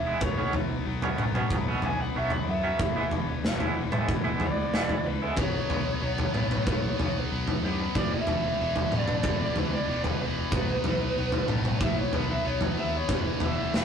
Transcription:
Already playing: fingered electric bass E1, distorted electric guitar E2 B2 E3 B3, lead electric guitar E5
0.06 clean electric guitar E3 G#3 B3 E4
0.21 fingered electric bass B1, distorted electric guitar B2 F#3 B3, lead electric guitar C#5, kick, floor tom
0.38 clean electric guitar B2 F#3 B3 C#4
0.53 fingered electric bass B1, distorted electric guitar B2 F#3 B3, muted clean electric guitar stroke, floor tom
0.86 fingered electric bass B1, distorted electric guitar B2 F#3 B3
1.02 clean electric guitar B2 F#3 B3 C#4, floor tom
1.18 fingered electric bass B1, distorted electric guitar B2 F#3 B3, mid tom
1.35 clean electric guitar B2 F#3 B3 C#4, mid tom
1.50 fingered electric bass B1, distorted electric guitar B2 F#3 B3, kick, floor tom
1.68 clean electric guitar B2 F#3 B3 C#4
1.82 fingered electric bass B1, distorted electric guitar B2 F#3 B3, lead electric guitar G#5, floor tom
2.00 lead electric guitar F#5, muted clean electric guitar stroke
2.15 fingered electric bass B1, clean electric guitar B2 F#3 B3 C#4, distorted electric guitar B2 F#3 B3, lead electric guitar E5
2.30 lead electric guitar F#5, floor tom
2.48 fingered electric bass F#2, distorted electric guitar B2 F#3 B3, lead electric guitar E5
2.64 clean electric guitar B2 F#3 B3 C#4
2.79 fingered electric bass E1, distorted electric guitar E2 B2 E3, kick, floor tom
2.96 clean electric guitar E3 G#3 B3 E4
3.11 fingered electric bass E1, distorted electric guitar E2 B2 E3, muted clean electric guitar stroke, floor tom
3.44 fingered electric bass E1, distorted electric guitar E2 B2 E3, snare
3.60 clean electric guitar E3 G#3 B3 E4, floor tom
3.76 fingered electric bass E1, distorted electric guitar E2 B2 E3
3.92 clean electric guitar E3 G#3 B3 E4, mid tom
4.08 fingered electric bass E1, distorted electric guitar E2 B2 E3, kick, floor tom
4.24 clean electric guitar E3 G#3 B3 E4
4.40 fingered electric bass C#2, distorted electric guitar E2 B2 E3, lead electric guitar D5, floor tom
4.57 muted clean electric guitar stroke
4.72 fingered electric bass E1, distorted electric guitar E2 B2 E3, clean electric guitar E3 G#3 B3 E4, snare
4.89 floor tom
5.05 fingered electric bass C#2, distorted electric guitar E2 B2 E3, lead electric guitar B4
5.22 clean electric guitar E3 G#3 B3 E4, lead electric guitar A4
5.37 fingered electric bass B1, distorted electric guitar B2 F#3 B3, lead electric guitar C#5, kick, floor tom
5.69 fingered electric bass B1, distorted electric guitar B2 F#3 B3, floor tom
6.01 fingered electric bass B1, distorted electric guitar B2 F#3 B3
6.18 floor tom
6.34 fingered electric bass B1, distorted electric guitar B2 F#3 B3, mid tom
6.51 mid tom
6.66 fingered electric bass B1, distorted electric guitar B2 F#3 B3, kick, floor tom
6.98 fingered electric bass B1, distorted electric guitar B2 F#3 B3, floor tom
7.31 fingered electric bass B1, distorted electric guitar B2 F#3 B3
7.47 floor tom
7.62 fingered electric bass F#2, distorted electric guitar B2 F#3 B3, lead electric guitar G4
7.80 lead electric guitar B4
7.95 fingered electric bass E1, distorted electric guitar E2 B2 E3, lead electric guitar D5, kick, floor tom
8.13 lead electric guitar E5
8.27 fingered electric bass E1, distorted electric guitar E2 B2 E3, floor tom
8.59 fingered electric bass E1, distorted electric guitar E2 B2 E3
8.76 floor tom
8.92 fingered electric bass E1, distorted electric guitar E2 B2 E3, mid tom
8.99 lead electric guitar D5
9.08 mid tom
9.23 fingered electric bass E1, distorted electric guitar E2 B2 E3, kick, floor tom
9.42 lead electric guitar D5
9.56 fingered electric bass C#2, distorted electric guitar E2 B2 E3, lead electric guitar B4, floor tom
9.74 lead electric guitar D5
9.87 fingered electric bass E1, distorted electric guitar E2 B2 E3
10.04 lead electric guitar B4, floor tom
10.20 fingered electric bass E1, distorted electric guitar E2 B2 E3, lead electric guitar B4
10.51 fingered electric bass B1, distorted electric guitar B2 F#3 B3, kick, floor tom
10.84 fingered electric bass B1, distorted electric guitar B2 F#3 B3, floor tom
11.16 fingered electric bass B1, distorted electric guitar B2 F#3 B3
11.32 floor tom
11.48 fingered electric bass B1, distorted electric guitar B2 F#3 B3, mid tom
11.65 mid tom
11.81 fingered electric bass B1, distorted electric guitar B2 F#3 B3, lead electric guitar E5, kick, floor tom
11.98 lead electric guitar C#5
12.13 fingered electric bass B1, distorted electric guitar B2 F#3 B3, lead electric guitar B4, floor tom
12.32 lead electric guitar E5
12.44 fingered electric bass B1, distorted electric guitar B2 F#3 B3, lead electric guitar C#5
12.61 lead electric guitar B4, floor tom
12.77 fingered electric bass D#2, distorted electric guitar B2 F#3 B3, lead electric guitar E5
12.97 lead electric guitar C#5
13.09 fingered electric bass E1, distorted electric guitar E2 B2 E3, kick, floor tom
13.14 lead electric guitar B4
13.40 fingered electric bass E1, distorted electric guitar E2 B2 E3, floor tom
13.45 lead electric guitar E5
13.74 fingered electric bass E1, distorted electric guitar E2 B2 E3, snare

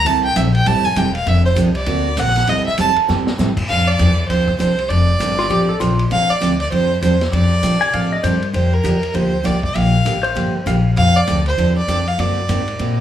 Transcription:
0.05 upright bass C2, steel-string acoustic guitar C3 E3 G3 C4 E4 A4, fiddle A5, ride
0.24 fiddle G5
0.35 upright bass A#1, steel-string acoustic guitar C3 E3 G3 C4 E4 A4, fiddle E5, hi-hat pedal, ride
0.54 fiddle G5, ride
0.66 upright bass A1, steel-string acoustic guitar C3 E3 G3 C4 E4 A4, fiddle A5, ride
0.85 fiddle G#5, muted upright bass stroke
0.95 upright bass E1, steel-string acoustic guitar C3 E3 G3 C4 E4 A4, fiddle G5, hi-hat pedal, ride
1.15 fiddle F5, ride
1.26 upright bass F1, steel-string acoustic guitar F3 C4 D4 A4, fiddle E5, ride
1.45 fiddle C5
1.55 upright bass C2, steel-string acoustic guitar F3 C4 D4 A4, hi-hat pedal, ride
1.75 fiddle D5, ride
1.86 upright bass D2, steel-string acoustic guitar D3 A#3 C4 F#4 A#4, ride
2.17 upright bass A#1, steel-string acoustic guitar D3 A#3 C4 F#4 A#4, fiddle F#5, hi-hat pedal, ride
2.27 snare
2.36 snare, ride
2.47 upright bass C2, steel-string acoustic guitar C3 E3 G3 C4 E4 A4, fiddle D#5, ride
2.66 fiddle E5, muted upright bass stroke
2.78 upright bass E2, steel-string acoustic guitar C3 E3 G3 C4 E4 A4, fiddle A5, hi-hat pedal, ride
2.96 muted upright bass stroke, ride
3.08 upright bass G2, steel-string acoustic guitar C3 E3 G3 C4 E4 A4, snare
3.27 muted upright bass stroke, snare
3.38 upright bass A2, steel-string acoustic guitar C3 E3 G3 C4 E4 A4, snare, hi-hat pedal
3.57 kick, crash
3.68 upright bass F2, steel-string acoustic guitar F3 C4 D4 A4, fiddle F5
3.88 fiddle D5
3.98 upright bass E2, steel-string acoustic guitar F3 C4 D4 A4, hi-hat pedal, ride
4.29 upright bass D2, steel-string acoustic guitar F3 C4 D4 A4, fiddle C5, ride
4.48 kick
4.59 upright bass C2, steel-string acoustic guitar F3 C4 D4 A4, fiddle C5, hi-hat pedal, ride
4.78 ride
4.89 upright bass F1, steel-string acoustic guitar F3 C4 D4 A4, fiddle D5, ride
5.19 upright bass G1, steel-string acoustic guitar F3 C4 D4 A4, hi-hat pedal, ride
5.39 electric slide guitar F4, snare
5.50 upright bass A1, steel-string acoustic guitar F3 C4 D4 A4, electric slide guitar G4, ride
5.69 electric slide guitar A4
5.80 upright bass A#1, steel-string acoustic guitar F3 C4 D4 A4, electric slide guitar F4, hi-hat pedal, ride
5.99 ride
6.11 upright bass C2, steel-string acoustic guitar F3 C4 D4 A4, fiddle F5, ride
6.30 fiddle D5, muted upright bass stroke
6.40 upright bass D2, steel-string acoustic guitar F3 C4 D4 A4, hi-hat pedal, ride
6.60 fiddle D5, ride
6.71 upright bass F2, steel-string acoustic guitar F3 C4 D4 A4, fiddle C5, ride
7.02 upright bass E2, steel-string acoustic guitar F3 C4 D4 A4, fiddle C5, hi-hat pedal, ride
7.21 snare, ride
7.32 upright bass F2, steel-string acoustic guitar F3 C4 D4 A4, fiddle D5, ride
7.62 upright bass C3, steel-string acoustic guitar F3 C4 D4 A4, hi-hat pedal, ride
7.81 electric slide guitar G#5, ride
7.93 upright bass A2, steel-string acoustic guitar F3 C4 D4 A4, electric slide guitar F5, ride
8.12 electric slide guitar D#5
8.23 upright bass G2, steel-string acoustic guitar F3 C4 D4 A4, electric slide guitar C5, hi-hat pedal, ride
8.42 ride
8.53 upright bass F2, steel-string acoustic guitar D3 F3 A#3 D4 G4, fiddle C5, ride
8.73 fiddle A#4
8.83 upright bass E2, steel-string acoustic guitar D3 F3 A#3 D4 G4, hi-hat pedal, ride
9.03 ride
9.14 upright bass D2, steel-string acoustic guitar D3 F3 A#3 D4 G4, fiddle C5, ride
9.44 upright bass C2, steel-string acoustic guitar D3 F3 A#3 D4 G4, fiddle D5, hi-hat pedal, ride
9.63 fiddle D5, kick
9.74 upright bass A#1, steel-string acoustic guitar D3 F3 A#3 D4 G4, fiddle F5, ride
10.05 upright bass A1, steel-string acoustic guitar D3 F3 A#3 D4 G4, hi-hat pedal, ride
10.23 electric slide guitar C5, ride
10.35 upright bass G1, steel-string acoustic guitar D3 F3 A#3 D4 G4, ride
10.66 upright bass A#1, steel-string acoustic guitar D3 F3 A#3 D4 G4, electric slide guitar F5, hi-hat pedal, ride
10.97 upright bass F2, steel-string acoustic guitar F3 C4 D4 A4, fiddle F5, ride
11.16 fiddle D5
11.27 upright bass D2, steel-string acoustic guitar F3 C4 D4 A4, hi-hat pedal, ride
11.46 fiddle C5, ride
11.58 upright bass E2, steel-string acoustic guitar F3 C4 D4 A4, ride
11.78 fiddle D5
11.88 upright bass F2, steel-string acoustic guitar F3 C4 D4 A4, hi-hat pedal, ride
12.07 fiddle F5
12.18 upright bass F#2, steel-string acoustic guitar D3 A#3 C4 F#4 A#4, fiddle D5, ride
12.48 upright bass G#2, steel-string acoustic guitar D3 A#3 C4 F#4 A#4, hi-hat pedal, ride
12.68 ride
12.79 upright bass A#2, steel-string acoustic guitar D3 A#3 C4 F#4 A#4, ride

